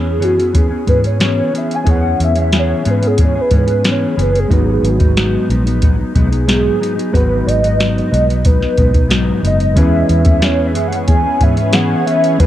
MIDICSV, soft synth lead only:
0, 0, Header, 1, 2, 480
1, 0, Start_track
1, 0, Key_signature, 4, "major"
1, 0, Tempo, 657895
1, 1365, Time_signature, 4, 2, 24, 8
1, 9095, End_track
2, 0, Start_track
2, 0, Title_t, "Soft synth lead"
2, 0, Program_c, 0, 80
2, 0, Note_on_c, 0, 68, 87
2, 175, Note_on_c, 0, 66, 94
2, 186, Note_off_c, 0, 68, 0
2, 420, Note_on_c, 0, 68, 90
2, 431, Note_off_c, 0, 66, 0
2, 647, Note_on_c, 0, 71, 89
2, 658, Note_off_c, 0, 68, 0
2, 766, Note_off_c, 0, 71, 0
2, 780, Note_on_c, 0, 73, 93
2, 884, Note_off_c, 0, 73, 0
2, 895, Note_on_c, 0, 73, 105
2, 1114, Note_off_c, 0, 73, 0
2, 1152, Note_on_c, 0, 76, 91
2, 1275, Note_on_c, 0, 80, 109
2, 1286, Note_off_c, 0, 76, 0
2, 1380, Note_off_c, 0, 80, 0
2, 1391, Note_on_c, 0, 78, 114
2, 1602, Note_off_c, 0, 78, 0
2, 1633, Note_on_c, 0, 76, 96
2, 1732, Note_off_c, 0, 76, 0
2, 1757, Note_on_c, 0, 76, 99
2, 1889, Note_on_c, 0, 73, 95
2, 1900, Note_off_c, 0, 76, 0
2, 2118, Note_on_c, 0, 71, 102
2, 2129, Note_off_c, 0, 73, 0
2, 2238, Note_on_c, 0, 68, 89
2, 2249, Note_off_c, 0, 71, 0
2, 2342, Note_off_c, 0, 68, 0
2, 2365, Note_on_c, 0, 73, 95
2, 2485, Note_on_c, 0, 71, 87
2, 2496, Note_off_c, 0, 73, 0
2, 2586, Note_off_c, 0, 71, 0
2, 2611, Note_on_c, 0, 71, 94
2, 2853, Note_on_c, 0, 73, 93
2, 2864, Note_off_c, 0, 71, 0
2, 3070, Note_off_c, 0, 73, 0
2, 3081, Note_on_c, 0, 71, 80
2, 3203, Note_on_c, 0, 68, 87
2, 3214, Note_off_c, 0, 71, 0
2, 3425, Note_off_c, 0, 68, 0
2, 3446, Note_on_c, 0, 68, 73
2, 3568, Note_on_c, 0, 66, 80
2, 3579, Note_off_c, 0, 68, 0
2, 4028, Note_off_c, 0, 66, 0
2, 4499, Note_on_c, 0, 68, 93
2, 5184, Note_off_c, 0, 68, 0
2, 5205, Note_on_c, 0, 71, 114
2, 5442, Note_on_c, 0, 75, 116
2, 5453, Note_off_c, 0, 71, 0
2, 6172, Note_on_c, 0, 71, 88
2, 6183, Note_off_c, 0, 75, 0
2, 6650, Note_off_c, 0, 71, 0
2, 6908, Note_on_c, 0, 75, 90
2, 7122, Note_off_c, 0, 75, 0
2, 7134, Note_on_c, 0, 76, 109
2, 7355, Note_off_c, 0, 76, 0
2, 7371, Note_on_c, 0, 76, 94
2, 7620, Note_on_c, 0, 73, 99
2, 7631, Note_off_c, 0, 76, 0
2, 7774, Note_off_c, 0, 73, 0
2, 7783, Note_on_c, 0, 76, 96
2, 7925, Note_off_c, 0, 76, 0
2, 7937, Note_on_c, 0, 78, 101
2, 8007, Note_off_c, 0, 78, 0
2, 8082, Note_on_c, 0, 80, 109
2, 8339, Note_on_c, 0, 76, 100
2, 8350, Note_off_c, 0, 80, 0
2, 8567, Note_on_c, 0, 78, 112
2, 8578, Note_off_c, 0, 76, 0
2, 8798, Note_off_c, 0, 78, 0
2, 8803, Note_on_c, 0, 76, 93
2, 9042, Note_on_c, 0, 71, 106
2, 9053, Note_off_c, 0, 76, 0
2, 9095, Note_off_c, 0, 71, 0
2, 9095, End_track
0, 0, End_of_file